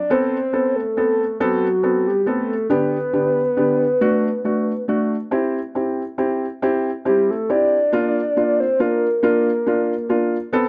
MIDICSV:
0, 0, Header, 1, 3, 480
1, 0, Start_track
1, 0, Tempo, 868307
1, 56, Time_signature, 6, 3, 24, 8
1, 5907, End_track
2, 0, Start_track
2, 0, Title_t, "Soft synth lead"
2, 0, Program_c, 0, 80
2, 0, Note_on_c, 0, 74, 82
2, 65, Note_on_c, 0, 72, 94
2, 73, Note_off_c, 0, 74, 0
2, 420, Note_on_c, 0, 69, 80
2, 429, Note_off_c, 0, 72, 0
2, 537, Note_off_c, 0, 69, 0
2, 548, Note_on_c, 0, 69, 82
2, 764, Note_off_c, 0, 69, 0
2, 789, Note_on_c, 0, 66, 81
2, 1145, Note_on_c, 0, 67, 77
2, 1154, Note_off_c, 0, 66, 0
2, 1258, Note_off_c, 0, 67, 0
2, 1261, Note_on_c, 0, 69, 80
2, 1480, Note_off_c, 0, 69, 0
2, 1506, Note_on_c, 0, 71, 88
2, 2683, Note_off_c, 0, 71, 0
2, 3915, Note_on_c, 0, 67, 83
2, 4039, Note_on_c, 0, 69, 93
2, 4047, Note_off_c, 0, 67, 0
2, 4148, Note_on_c, 0, 74, 97
2, 4157, Note_off_c, 0, 69, 0
2, 4754, Note_on_c, 0, 72, 90
2, 4762, Note_off_c, 0, 74, 0
2, 4870, Note_on_c, 0, 70, 85
2, 4878, Note_off_c, 0, 72, 0
2, 5106, Note_off_c, 0, 70, 0
2, 5109, Note_on_c, 0, 70, 71
2, 5621, Note_off_c, 0, 70, 0
2, 5907, End_track
3, 0, Start_track
3, 0, Title_t, "Felt piano"
3, 0, Program_c, 1, 0
3, 56, Note_on_c, 1, 59, 74
3, 59, Note_on_c, 1, 60, 70
3, 60, Note_on_c, 1, 69, 78
3, 199, Note_off_c, 1, 59, 0
3, 201, Note_off_c, 1, 60, 0
3, 201, Note_off_c, 1, 69, 0
3, 292, Note_on_c, 1, 59, 53
3, 294, Note_on_c, 1, 60, 46
3, 296, Note_on_c, 1, 69, 64
3, 437, Note_off_c, 1, 59, 0
3, 437, Note_off_c, 1, 60, 0
3, 439, Note_off_c, 1, 69, 0
3, 536, Note_on_c, 1, 59, 59
3, 538, Note_on_c, 1, 60, 52
3, 539, Note_on_c, 1, 69, 70
3, 678, Note_off_c, 1, 59, 0
3, 679, Note_off_c, 1, 60, 0
3, 680, Note_off_c, 1, 69, 0
3, 776, Note_on_c, 1, 59, 77
3, 776, Note_on_c, 1, 60, 69
3, 778, Note_on_c, 1, 69, 87
3, 917, Note_off_c, 1, 59, 0
3, 917, Note_off_c, 1, 60, 0
3, 918, Note_off_c, 1, 69, 0
3, 1012, Note_on_c, 1, 59, 57
3, 1014, Note_on_c, 1, 60, 50
3, 1016, Note_on_c, 1, 69, 57
3, 1155, Note_off_c, 1, 59, 0
3, 1156, Note_off_c, 1, 60, 0
3, 1157, Note_off_c, 1, 69, 0
3, 1251, Note_on_c, 1, 59, 57
3, 1252, Note_on_c, 1, 60, 54
3, 1255, Note_on_c, 1, 69, 66
3, 1394, Note_off_c, 1, 59, 0
3, 1395, Note_off_c, 1, 60, 0
3, 1396, Note_off_c, 1, 69, 0
3, 1490, Note_on_c, 1, 50, 69
3, 1491, Note_on_c, 1, 59, 60
3, 1491, Note_on_c, 1, 62, 65
3, 1495, Note_on_c, 1, 67, 80
3, 1634, Note_off_c, 1, 50, 0
3, 1634, Note_off_c, 1, 62, 0
3, 1635, Note_off_c, 1, 59, 0
3, 1636, Note_off_c, 1, 67, 0
3, 1731, Note_on_c, 1, 50, 57
3, 1732, Note_on_c, 1, 59, 48
3, 1733, Note_on_c, 1, 67, 57
3, 1734, Note_on_c, 1, 62, 47
3, 1875, Note_off_c, 1, 50, 0
3, 1876, Note_off_c, 1, 59, 0
3, 1876, Note_off_c, 1, 67, 0
3, 1877, Note_off_c, 1, 62, 0
3, 1972, Note_on_c, 1, 50, 61
3, 1972, Note_on_c, 1, 59, 50
3, 1974, Note_on_c, 1, 62, 53
3, 1975, Note_on_c, 1, 67, 63
3, 2117, Note_off_c, 1, 50, 0
3, 2117, Note_off_c, 1, 59, 0
3, 2118, Note_off_c, 1, 62, 0
3, 2118, Note_off_c, 1, 67, 0
3, 2217, Note_on_c, 1, 57, 71
3, 2217, Note_on_c, 1, 62, 69
3, 2219, Note_on_c, 1, 66, 83
3, 2361, Note_off_c, 1, 57, 0
3, 2361, Note_off_c, 1, 62, 0
3, 2362, Note_off_c, 1, 66, 0
3, 2458, Note_on_c, 1, 57, 54
3, 2460, Note_on_c, 1, 62, 48
3, 2460, Note_on_c, 1, 66, 55
3, 2602, Note_off_c, 1, 57, 0
3, 2603, Note_off_c, 1, 62, 0
3, 2603, Note_off_c, 1, 66, 0
3, 2698, Note_on_c, 1, 57, 55
3, 2701, Note_on_c, 1, 62, 50
3, 2702, Note_on_c, 1, 66, 60
3, 2842, Note_off_c, 1, 57, 0
3, 2844, Note_off_c, 1, 62, 0
3, 2844, Note_off_c, 1, 66, 0
3, 2936, Note_on_c, 1, 60, 67
3, 2939, Note_on_c, 1, 64, 65
3, 2940, Note_on_c, 1, 67, 70
3, 3082, Note_off_c, 1, 60, 0
3, 3083, Note_off_c, 1, 64, 0
3, 3083, Note_off_c, 1, 67, 0
3, 3179, Note_on_c, 1, 60, 51
3, 3181, Note_on_c, 1, 64, 45
3, 3184, Note_on_c, 1, 67, 53
3, 3323, Note_off_c, 1, 60, 0
3, 3324, Note_off_c, 1, 64, 0
3, 3326, Note_off_c, 1, 67, 0
3, 3416, Note_on_c, 1, 60, 58
3, 3417, Note_on_c, 1, 64, 52
3, 3419, Note_on_c, 1, 67, 69
3, 3563, Note_off_c, 1, 60, 0
3, 3563, Note_off_c, 1, 64, 0
3, 3565, Note_off_c, 1, 67, 0
3, 3661, Note_on_c, 1, 60, 75
3, 3663, Note_on_c, 1, 64, 66
3, 3666, Note_on_c, 1, 67, 81
3, 3806, Note_off_c, 1, 60, 0
3, 3807, Note_off_c, 1, 64, 0
3, 3808, Note_off_c, 1, 67, 0
3, 3899, Note_on_c, 1, 60, 63
3, 3903, Note_on_c, 1, 64, 52
3, 3903, Note_on_c, 1, 67, 65
3, 4045, Note_off_c, 1, 60, 0
3, 4047, Note_off_c, 1, 64, 0
3, 4047, Note_off_c, 1, 67, 0
3, 4143, Note_on_c, 1, 60, 53
3, 4144, Note_on_c, 1, 64, 57
3, 4147, Note_on_c, 1, 67, 65
3, 4287, Note_off_c, 1, 60, 0
3, 4288, Note_off_c, 1, 64, 0
3, 4289, Note_off_c, 1, 67, 0
3, 4381, Note_on_c, 1, 58, 79
3, 4383, Note_on_c, 1, 62, 74
3, 4385, Note_on_c, 1, 65, 82
3, 4526, Note_off_c, 1, 58, 0
3, 4527, Note_off_c, 1, 62, 0
3, 4528, Note_off_c, 1, 65, 0
3, 4624, Note_on_c, 1, 58, 50
3, 4627, Note_on_c, 1, 62, 52
3, 4628, Note_on_c, 1, 65, 59
3, 4767, Note_off_c, 1, 58, 0
3, 4769, Note_off_c, 1, 62, 0
3, 4769, Note_off_c, 1, 65, 0
3, 4862, Note_on_c, 1, 58, 63
3, 4865, Note_on_c, 1, 62, 58
3, 4865, Note_on_c, 1, 65, 71
3, 5006, Note_off_c, 1, 58, 0
3, 5007, Note_off_c, 1, 62, 0
3, 5007, Note_off_c, 1, 65, 0
3, 5101, Note_on_c, 1, 58, 83
3, 5104, Note_on_c, 1, 62, 71
3, 5105, Note_on_c, 1, 65, 81
3, 5245, Note_off_c, 1, 58, 0
3, 5246, Note_off_c, 1, 62, 0
3, 5247, Note_off_c, 1, 65, 0
3, 5343, Note_on_c, 1, 58, 65
3, 5346, Note_on_c, 1, 62, 61
3, 5348, Note_on_c, 1, 65, 63
3, 5485, Note_off_c, 1, 58, 0
3, 5487, Note_off_c, 1, 62, 0
3, 5488, Note_off_c, 1, 65, 0
3, 5580, Note_on_c, 1, 58, 59
3, 5582, Note_on_c, 1, 62, 54
3, 5582, Note_on_c, 1, 65, 70
3, 5723, Note_off_c, 1, 58, 0
3, 5724, Note_off_c, 1, 62, 0
3, 5724, Note_off_c, 1, 65, 0
3, 5819, Note_on_c, 1, 59, 76
3, 5820, Note_on_c, 1, 60, 65
3, 5823, Note_on_c, 1, 69, 91
3, 5907, Note_off_c, 1, 59, 0
3, 5907, Note_off_c, 1, 60, 0
3, 5907, Note_off_c, 1, 69, 0
3, 5907, End_track
0, 0, End_of_file